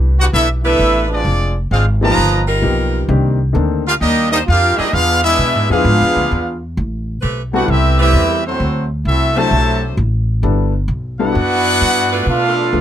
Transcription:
Already playing: C2 E3 A3 B3 D4 G4
0.19 D4 F#4 G4 B4 F#5
0.33 B1 E3 B3 D4 E4 A4 B4 E5
0.63 E3 A3 B3 D4 E4 G4 A4 B4 E5
0.79 A1
1.09 F3 G#3 C4 D4 F4 G#4 D5
1.25 F1
1.71 G#1 G#3 C4 D4 F4 G#4 C5 F5
2.01 A#2 D#3 F3 A#3 B3 D#4 F4 G4 B4 D#5 A#5
2.18 G1
2.47 G3 D#4 F4 A#4
2.62 B1 F3 A#3 B3 D#4 G4
3.08 C2 D#3 A#3 C4 D4 G4
3.53 D2 D#3 A#3 C4 D4 A4
3.87 D4 F4 G4 A#4 F5
4.01 D#2 G3 A#3 D4 D#4 G4 D#5
4.31 G3 A#3 D4 D#4 G4 C5 D#5
4.46 F2 D4 F4 G4 F5
4.50 A#4
4.77 F3 G3 A#3 D4 D#4 E4 G4 G#4 D#5, muted upright bass stroke
4.92 E2 B3 D4 F4 G#4 B4 F5
5.24 G#3 B3 D4 E4 G#4 B4 E5
5.39 B2
5.55 G#2
5.69 E2 F3 B3 D4 E4 F4 G#4 B4 F5
5.85 G#2
6.00 E2
6.16 D2
6.31 E2
6.77 A1
7.20 B1 A3 C4 G4 B4
7.53 G3 B3 C4 D4 E4 F#4 G4 A4 B4 F#5
7.67 C2 G3 C4 E4 G4 B4 E5
7.98 G3 A3 C4 E4 G4 B4 E5
8.13 E2
8.46 F#3 A3 C4 E4 F#4 C5
8.60 D2
9.05 C2 A3 C4 E4 F#4 A4 E5
9.35 C3 F#3 A3 C4 D4 E4 F#4 A4 C5 E5 A5
9.39 C5
9.51 B1
9.97 A1
10.43 G1 G3 B3 D4 E4 A4
10.88 B1
11.19 G3 B3 D4 E4 F#4 A4 B4 D5 F#5
11.35 F#2
11.81 G2
12.11 A3 D4 F4 B4
12.26 B2 A3 D4 F4 A4 B4 F5
12.73 D2 F3 A3 B3 D4 A4

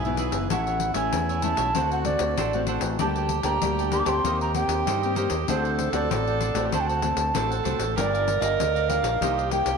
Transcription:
Already playing: B1 G#2 E4 G#5
0.04 E3 B3 E4 G#4 B4 E5, pandeiro
0.17 E4 G#4 B4 E5, pandeiro
0.31 F#1 G#4 B4 E5, pandeiro
0.50 A1 A2 A3 C#4 E4 A4 C#5 E5 F#5, pandeiro
0.66 A4 C#5 E5, pandeiro
0.80 muted cavaquinho stroke, pandeiro
0.94 A1 A3 C#4 E4 A4 C#5 E5 G#5, pandeiro
1.13 E2 E3, pandeiro
1.29 A4 C#5 E5, pandeiro
1.42 A3 C#4 E4 A4 C#5 E5 A5, pandeiro
1.57 B1 A4 C#5 E5, pandeiro
1.75 D2 D3 A3 C4 D4 F#4 A4 C5 F#5, pandeiro
1.91 A4 C5 F#5, pandeiro
2.05 A3 C4 F#4 D5, muted cavaquinho stroke, pandeiro
2.19 D2, pandeiro
2.37 A1 A2 D4 A4 C5 F#5, pandeiro
2.53 A3 C4 F#4 A4 C5 F#5, pandeiro
2.67 D4 A4 C5 F#5, pandeiro
2.81 A1 A4 C5 F#5, pandeiro
2.98 D2 G3 A#3 D4 G4 A#4 D5 G5 A5, pandeiro
3.15 D5 G5 A5, pandeiro
3.29 muted cavaquinho stroke, pandeiro
3.43 D2 A#3 D4 G4 D5 G5 A5 A#5, pandeiro
3.62 D2 G3 A#3 D4 G4, pandeiro
3.79 D5 G5 A5, pandeiro
3.91 A#3 D4 G4 A#4 D5 G5 A5 C6, pandeiro
3.99 D6
4.05 D2 A#3 C4 G4 D5 G5 A5 C6, pandeiro
4.24 D#2 D#3 D#4 G4 A#4 C5 D#5, pandeiro
4.41 A#4 C5 D#5 A#5, pandeiro
4.54 A#3 C4 G4 G5, muted cavaquinho stroke, pandeiro
4.68 D#2, pandeiro
4.86 G2 D#3 D#4 A#4 C5 D#5, pandeiro
5.02 A#3 C4 G4 A#4 C5 D#5, pandeiro
5.15 A#3 C4 D#4 G4 A#4 C5 D#5, pandeiro
5.30 D#2 A#4 C5 D#5, pandeiro
5.48 D2 D3 A3 C4 D4 F#4 A4 C5 F#5, pandeiro
5.64 A4 C5 F#5, pandeiro
5.79 muted cavaquinho stroke, pandeiro
5.92 D2 A3 C4 F#4 A4 C5 D5 F#5, pandeiro
6.11 A1 A2 D5, pandeiro
6.27 A4 C5 F#5, pandeiro
6.40 D4 A4 C5 F#5, pandeiro
6.54 A1 A3 C4 F#4 A4 C5 F#5, pandeiro
6.65 G4
6.72 D2 D3 D4 F#4 A4 C5 F#5 A5, pandeiro
6.80 G5
6.87 A4 C5 F#5 A5, pandeiro
7.02 A3 C4 F#4, muted cavaquinho stroke, pandeiro
7.16 D2, pandeiro
7.34 A1 A2 A3 C4 D4 F#4 A4 C5 F#5, pandeiro
7.51 A4 C5 F#5, pandeiro
7.64 C2 A3 C4 D4 F#4 A4 C5 F#5, pandeiro
7.78 A1 A4 C5 F#5, pandeiro
7.96 G1 G3 D4 F4 G4 A#4 D5 F5, pandeiro
8.13 A#4 D5 F5, pandeiro
8.26 muted cavaquinho stroke, pandeiro
8.40 G1 F4 A#4 D5 D#5 F5, pandeiro
8.59 D2 D3, pandeiro
8.75 A#4 D5 F5, pandeiro
8.88 D4 F4 G4 A#4 D5 F5, pandeiro
9.02 A#1 A#4 D5 F5, pandeiro
9.21 C2 C3 A#3 D#4 G4 A#4 C5 D#5, pandeiro
9.37 A#4 C5 D#5, pandeiro
9.51 A#3 D#4 G4 G5, muted cavaquinho stroke, pandeiro
9.65 C2, pandeiro

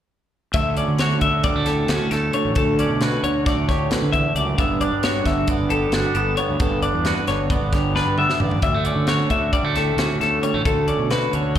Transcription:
0.54 D2 A3 E5, kick, closed hi-hat
0.77 C#4 D5, closed hi-hat
0.88 D3
0.99 F#4 C#5, snare, closed hi-hat
1.21 D2 D3 E5, kick, closed hi-hat
1.44 G3 D5, kick, closed hi-hat
1.55 D2 A3
1.66 A2 G4 A4, snare, closed hi-hat
1.88 D2 C#4 F#4, snare, closed hi-hat
2.11 D2 A3 A4, snare, closed hi-hat
2.33 D2 A3 C#5, closed hi-hat
2.45 A1
2.55 D2 A3 A4, kick, closed hi-hat
2.79 C#4 D5, closed hi-hat
2.90 B2
3.01 F#4 B4, snare, closed hi-hat
3.23 D2 D3 C#5, closed hi-hat
3.46 A3 D5, kick, snare, closed hi-hat
3.57 D2
3.69 A2 G4 C#5, kick, snare, closed hi-hat
3.91 D2 B4, snare, closed hi-hat
4.02 D3
4.13 E2 E5, kick, closed hi-hat
4.35 C#2 F#2 D5, closed hi-hat
4.58 G1 G2 B3 E5, kick, closed hi-hat
4.81 D4 D5, closed hi-hat
4.92 G2
5.03 F#4 C#5, snare, closed hi-hat
5.25 G1 D3 E5, kick, snare, closed hi-hat
5.48 B3 D5, kick, closed hi-hat
5.59 G1
5.70 D3 G4 A4, closed hi-hat
5.92 G1 D4 F#4, snare, closed hi-hat
6.15 G1 B3 A4, closed hi-hat
6.37 G2 B3 C#5, closed hi-hat
6.49 D2
6.60 G1 G2 B3 A4, kick, closed hi-hat
6.82 D4 D5, closed hi-hat
6.93 E2
7.05 F#4 B4, snare, closed hi-hat
7.27 G1 D3 C#5, snare, closed hi-hat
7.50 B3 D5, kick, closed hi-hat
7.61 G1
7.73 D3 G4 C#5, kick, snare, closed hi-hat
7.96 D4 B4, snare
8.06 G2
8.18 B3 E5, mid tom
8.30 snare
8.40 A1 G2 B3 D5, floor tom
8.51 floor tom
8.62 D2 G3 E5, kick, closed hi-hat
8.74 A3
8.85 C#4 D5, closed hi-hat
8.96 D3
9.07 F#4 C#5, snare, closed hi-hat
9.30 D2 D3 E5, kick, closed hi-hat
9.53 G3 D5, kick, closed hi-hat
9.63 D2 A3
9.76 A2 G4 A4, snare, closed hi-hat
9.97 D2 C#4 F#4, snare, closed hi-hat
10.20 D2 A3 A4, snare, closed hi-hat
10.42 D2 G3 C#5, closed hi-hat
10.54 A1 A3
10.65 D2 A3 A4, kick, closed hi-hat
10.88 C#4 D5, closed hi-hat
10.99 B2
11.11 F#4 B4, snare, closed hi-hat
11.33 D2 D3 C#5, closed hi-hat
11.56 kick, closed hi-hat

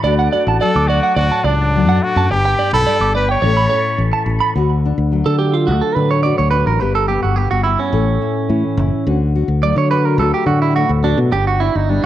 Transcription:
Already playing: A5
0.03 D2 A3 D4 F#4 D5 F#5 D6
0.19 F#5
0.32 F#4 D5
0.47 A1 A5
0.61 F#3 A4 D5
0.75 D2 D6
0.88 A3 F#4 D5
1.03 F#5
1.16 D2 A2 F#4 D5
1.31 A5
1.44 C#2 D4 D5
1.75 F#3 A3
1.87 F#2 F#5
2.03 D4 F#4
2.16 F#2 A5
2.29 G1 G2 B3 D4 G4 G5 B5 D6, muted clean electric guitar stroke
2.45 G5
2.59 D4 D5
2.73 B1 A4 B5
2.86 G3 D5
3.00 G1 D6
3.15 B3 B4 D5
3.29 C#5 G5
3.42 A1 A2 C#4 E4 A4 C#5 A5 C#6
3.57 B5
3.69 A4 C#5
3.98 A1 E3
4.13 A5
4.26 A1 C#4
4.41 B5
4.56 D2 D3 F#4
4.86 D4
4.98 D2
5.12 F#3 A3
5.26 D3 A4
5.39 D4 G4
5.54 F4
5.67 D2 A3 F#4
5.81 A4
5.95 A2 D3 D4 B4
6.11 C#5
6.23 F#4 D5
6.38 D2 C#5
6.51 D4 B4
6.67 A1 A#4
6.80 G1 G2 G3 B3 G4 B4
6.95 A4
7.08 B3 G4
7.23 G1 F#4
7.36 G3 B3 G4
7.51 G1 F#4
7.64 B3 E4
7.79 C#4
7.93 A1 A2 A4
8.22 E4
8.49 A2 E3 C#4
8.77 F#1 E4
9.06 D2 D3 F#4
9.35 F#4
9.48 D2
9.62 F#3 A3 D5
9.76 D3 C#5
9.91 F#4 B4
10.06 A#4
10.18 D2 A3 A4
10.34 G4
10.46 A2 D3 A3 F#4
10.62 E4
10.76 A3 F#4
10.89 D2
11.04 D4 F#4
11.18 B2
11.32 G1 B3 D4 G4, muted nylon-string guitar stroke
11.47 F#4
11.60 D4 E4
11.75 G1 D#4
11.89 G3 B3 D4

